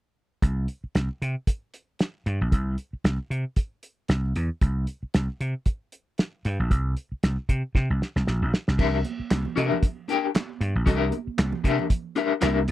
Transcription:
0.42 slap bass C2, kick, closed hi-hat
0.68 closed hi-hat
0.84 muted slap bass stroke
0.95 slap bass C2, snare, closed hi-hat
1.22 slap bass C3, closed hi-hat
1.47 kick, closed hi-hat
1.74 closed hi-hat
1.99 snare, closed hi-hat
2.26 slap bass G2, closed hi-hat
2.41 slap bass A#1
2.52 slap bass C2, kick, closed hi-hat
2.78 closed hi-hat
2.93 muted slap bass stroke
3.04 slap bass C2, snare, closed hi-hat
3.30 slap bass C3, closed hi-hat
3.56 kick, closed hi-hat
3.83 closed hi-hat
4.08 slap bass C2, snare, closed hi-hat
4.36 slap bass E2, closed hi-hat
4.61 slap bass C2, kick, closed hi-hat
4.87 closed hi-hat
5.03 muted slap bass stroke
5.14 slap bass C2, snare, closed hi-hat
5.41 slap bass C3, closed hi-hat
5.66 kick, closed hi-hat
5.92 closed hi-hat
6.18 snare, closed hi-hat
6.45 slap bass G2, closed hi-hat
6.60 slap bass A#1
6.71 slap bass C2, kick, closed hi-hat
6.97 closed hi-hat
7.12 muted slap bass stroke
7.23 slap bass C2, snare, closed hi-hat
7.49 slap bass C3, kick, closed hi-hat
7.75 slap bass C3, kick, snare
7.90 slap bass C2
8.02 snare
8.16 slap bass C2, snare
8.27 slap bass A#1, snare
8.42 slap bass A#1
8.54 snare
8.68 slap bass C2, snare
8.78 slap bass C2, clean electric guitar D4 G4 A#4 E5, kick, crash, low conga
9.04 closed hi-hat, muted conga, high conga
9.20 muted slap bass stroke
9.31 slap bass C2, snare, clap, closed hi-hat, high conga
9.45 low conga
9.56 slap bass C3, clean electric guitar D4 G4 A#4 E5, closed hi-hat, high conga
9.72 low conga
9.82 kick, closed hi-hat, muted conga
10.08 clean electric guitar D4 G4 A#4 G5, closed hi-hat, muted conga
10.35 snare, clap, closed hi-hat, muted conga, high conga
10.61 slap bass G2, closed hi-hat
10.76 slap bass A#1
10.86 slap bass C2, clean electric guitar D4 G4 A#4 E5, kick, closed hi-hat, low conga
11.12 closed hi-hat, muted conga, high conga
11.27 muted slap bass stroke
11.38 slap bass C2, snare, clap, closed hi-hat, high conga
11.53 low conga
11.64 slap bass C3, clean electric guitar D4 G4 A#4 E5, kick, closed hi-hat, muted conga, high conga
11.79 low conga
11.90 kick, closed hi-hat
12.15 clean electric guitar D4 G4 A#4 E5, closed hi-hat, muted conga
12.41 slap bass C2, clean electric guitar D4 G4 A#4 E5, snare, clap, closed hi-hat, muted conga, high conga
12.68 slap bass E2, closed hi-hat

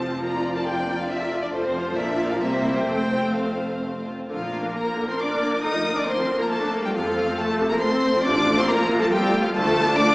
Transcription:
Already playing: double bass section F1, cello section F2, viola section F3 C4, violin section C5 A5
0.01 violin section F4
0.12 violin section C4
0.23 violin section A#3 D5 A#5, viola section F4
0.34 violin section D4
0.44 violin section F4
0.56 violin section A#4 A5
0.67 violin section F4 G5
0.78 violin section D4
0.88 violin section A#3
1.00 violin section D4 F5
1.10 violin section F4 E5
1.21 violin section A#4
1.33 violin section F4
1.42 violin section D4 D5
1.52 double bass section F1, cello section F2, viola section F3, violin section A3 C5
1.65 violin section C4
1.76 violin section F4
1.88 violin section A4
1.96 double bass section A#1, cello section A#2, violin section A#3 D5 E5
2.09 violin section D4
2.20 violin section F4
2.31 violin section A#4 F5
2.41 double bass section C2, cello section C3, viola section A#3 C4, violin section A#3 C5 E5
2.54 violin section C4
2.65 violin section E4
2.75 violin section G4 G5
2.87 double bass section F1, cello section F2, violin section A3 G5, viola section A3
3.00 violin section C4
3.12 violin section F4
3.25 violin section C4
3.36 violin section A3 F5
3.48 violin section C4
3.60 violin section F4
3.72 violin section C4
3.84 violin section A3
3.95 violin section C4
4.06 violin section F4
4.18 violin section C4
4.30 double bass section A#1, viola section D3 A#4, cello section F3, violin section F4 F5
4.41 viola section F3
4.53 viola section A#3
4.63 viola section D4
4.74 viola section A#3, cello section A#3, violin section A#4 A#5
4.85 viola section F3
4.96 viola section D3
5.06 viola section F3, cello section C4, violin section C5 C6
5.18 viola section A#3, cello section D4, violin section D5 D6
5.29 viola section D4
5.41 viola section A#3
5.52 viola section F3
5.62 double bass section D2, viola section D3, cello section D#4, violin section D#5 D#6
5.74 viola section F3
5.85 viola section A#3
5.96 cello section D4, viola section D4, violin section D5 D6
6.06 viola section A#3, cello section C4, violin section C5 C6
6.17 viola section F3
6.27 viola section D3
6.39 viola section F3, cello section A#3, violin section A#4 A#5
6.49 cello section A3, viola section A#3, violin section A4 A5
6.62 viola section D4
6.73 viola section A#3
6.83 viola section F3, cello section G3, violin section G4 G5
6.94 double bass section F2, viola section C3 A4, cello section F3, violin section F4 F5
7.07 viola section F3
7.18 viola section A3
7.30 viola section C4
7.37 cello section A3, viola section A3, violin section A4 A5
7.51 viola section F3
7.61 viola section C3
7.69 viola section F3, cello section A#3, violin section A#4 A#5
7.80 viola section A3, cello section C4, violin section C5 C6
7.93 viola section C4
8.04 viola section A3
8.16 viola section F3
8.24 double bass section A1, viola section C3 F4, cello section D4, violin section D5 D6
8.36 viola section F3
8.47 viola section A3
8.57 cello section C4, viola section C4, violin section C5 C6
8.67 viola section A3, cello section A#3, violin section A#4 A#5
8.80 viola section F3
8.90 viola section C3
8.99 viola section F3, cello section A3, violin section A4 A5
9.09 cello section G3, viola section A3, violin section G4 G5
9.22 viola section C4
9.33 viola section A3
9.41 viola section F3, cello section F3, violin section F4 F5
9.52 double bass section D2, viola section D3, cello section A3, violin section A4 A5
9.65 viola section F3
9.75 viola section A3
9.86 viola section D4
9.95 viola section A3, cello section D4, violin section D5 D6
10.07 viola section F3

